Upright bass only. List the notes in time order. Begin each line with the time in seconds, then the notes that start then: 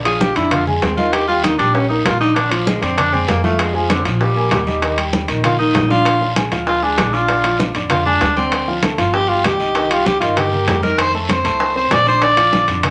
Already playing: A#1
0.36 F2
0.82 D#2
1.59 A#1
2.05 A#1
2.82 F2
3.29 F2
4.05 A#1
4.52 D#2
5.29 A#1
5.75 A#1
6.52 D2
6.98 A#1
7.75 F2
8.21 D2
8.98 G1
9.45 C2
10.21 G2
10.68 F2
11.45 C2
11.91 A#1
12.68 F2